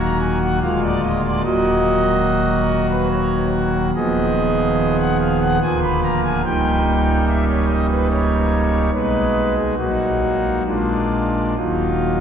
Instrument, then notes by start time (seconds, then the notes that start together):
pipe organ
Already playing: D#1 D#2 F#3 A#3 F#4
0.00 A#5
0.20 G#5
0.41 F#5
0.62 D1 D2 G#3 A#3 F4 F5
0.83 D5
1.02 D#5
1.24 D5
1.44 D#1 D#2 F#3 A#3 F#4 D#5
2.90 B4
3.11 C#5
3.95 D#1 D#2 F3 B3 G#4 D#5
4.99 F#5
5.20 F5
5.41 F#5
5.62 D1 D2 F3 A#3 F4 G#5
5.83 B5
6.03 A#5
6.25 G#5
6.45 C#1 C#2 G3 A#3 D#4 G5
7.27 E5
7.48 C#5
7.69 D#5
7.90 B4
8.11 C#5
8.94 B1 B2 G#3 D#4 B4
9.56 G#4
9.77 A#1 A#2 F#3 A#3 D#4 F#4
10.66 A#1 A#2 G#3 A#3 D4 F4
11.56 D#1 D#2 F#3 A#3 D#4 F4